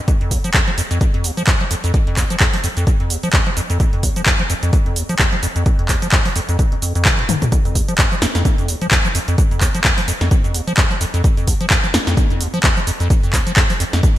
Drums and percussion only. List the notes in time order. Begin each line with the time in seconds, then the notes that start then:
0.08 kick, closed hi-hat, shaker
0.21 closed hi-hat
0.31 kick, open hi-hat, shaker
0.44 closed hi-hat, shaker
0.54 kick, clap, closed hi-hat, shaker
0.68 closed hi-hat
0.78 open hi-hat, shaker
0.91 closed hi-hat, shaker
1.01 kick, closed hi-hat, shaker
1.14 closed hi-hat
1.24 open hi-hat, shaker
1.37 closed hi-hat, shaker
1.47 kick, clap, closed hi-hat, shaker
1.61 closed hi-hat
1.71 open hi-hat, shaker
1.84 closed hi-hat, shaker
1.94 kick, closed hi-hat, shaker
2.07 closed hi-hat
2.17 kick, clap, open hi-hat, shaker
2.30 closed hi-hat, shaker
2.40 kick, clap, closed hi-hat, shaker
2.54 open hi-hat
2.64 open hi-hat, shaker
2.77 closed hi-hat, shaker
2.87 kick, closed hi-hat, shaker
3.00 closed hi-hat
3.10 open hi-hat, shaker
3.23 closed hi-hat, shaker
3.33 kick, clap, closed hi-hat, shaker
3.47 closed hi-hat
3.57 open hi-hat, shaker
3.70 closed hi-hat, shaker
3.80 kick, closed hi-hat, shaker
3.93 closed hi-hat
4.03 kick, open hi-hat, shaker
4.16 closed hi-hat, shaker
4.26 kick, clap, closed hi-hat, shaker
4.39 closed hi-hat
4.50 open hi-hat, shaker
4.63 closed hi-hat, shaker
4.73 kick, closed hi-hat, shaker
4.86 closed hi-hat
4.96 open hi-hat, shaker
5.09 closed hi-hat, shaker
5.19 kick, clap, closed hi-hat, shaker
5.33 closed hi-hat
5.43 open hi-hat, shaker
5.56 closed hi-hat, shaker
5.66 kick, closed hi-hat, shaker
5.79 closed hi-hat
5.89 kick, clap, open hi-hat, shaker
6.02 closed hi-hat, shaker
6.12 kick, clap, closed hi-hat, shaker
6.25 open hi-hat
6.36 open hi-hat, shaker
6.49 closed hi-hat, shaker
6.59 kick, closed hi-hat, shaker
6.72 closed hi-hat
6.82 open hi-hat, shaker
6.95 closed hi-hat, shaker
7.05 kick, clap, closed hi-hat, shaker
7.19 closed hi-hat
7.29 open hi-hat, high tom, shaker
7.42 closed hi-hat, mid tom, shaker
7.52 kick, closed hi-hat, shaker
7.65 closed hi-hat, shaker
7.75 kick, open hi-hat, shaker
7.88 closed hi-hat, shaker
7.98 kick, clap, closed hi-hat, shaker
8.12 closed hi-hat, shaker
8.22 snare, open hi-hat, shaker
8.35 snare, closed hi-hat, shaker
8.45 kick, closed hi-hat, shaker
8.58 closed hi-hat, shaker
8.68 open hi-hat, shaker
8.81 closed hi-hat, shaker
8.91 kick, clap, closed hi-hat, shaker
9.05 closed hi-hat, shaker
9.15 open hi-hat, shaker
9.28 closed hi-hat, shaker
9.38 kick, closed hi-hat, shaker
9.51 closed hi-hat, shaker
9.61 kick, clap, open hi-hat, shaker
9.75 closed hi-hat, shaker
9.84 kick, clap, closed hi-hat, shaker
9.98 open hi-hat, shaker
10.08 open hi-hat, shaker
10.21 snare, closed hi-hat, shaker
10.31 kick, closed hi-hat, shaker
10.44 closed hi-hat, shaker
10.54 open hi-hat, shaker
10.68 closed hi-hat, shaker
10.77 kick, clap, closed hi-hat, shaker
10.91 closed hi-hat, shaker
11.01 open hi-hat, shaker
11.14 closed hi-hat, shaker
11.24 kick, closed hi-hat, shaker
11.37 closed hi-hat, shaker
11.47 kick, open hi-hat, shaker
11.61 closed hi-hat, shaker
11.70 kick, clap, closed hi-hat, shaker
11.84 closed hi-hat, shaker
11.94 snare, open hi-hat, shaker
12.07 snare, closed hi-hat, shaker
12.17 kick, closed hi-hat, shaker
12.30 closed hi-hat, shaker
12.41 open hi-hat, shaker
12.54 closed hi-hat, shaker
12.63 kick, clap, closed hi-hat, shaker
12.77 closed hi-hat, shaker
12.87 open hi-hat, shaker
13.00 closed hi-hat, shaker
13.10 kick, closed hi-hat, shaker
13.23 closed hi-hat, shaker
13.33 kick, clap, open hi-hat, shaker
13.47 closed hi-hat, shaker
13.57 kick, clap, closed hi-hat, shaker
13.70 open hi-hat, shaker
13.80 open hi-hat, shaker
13.93 snare, closed hi-hat, shaker
14.03 kick, closed hi-hat, shaker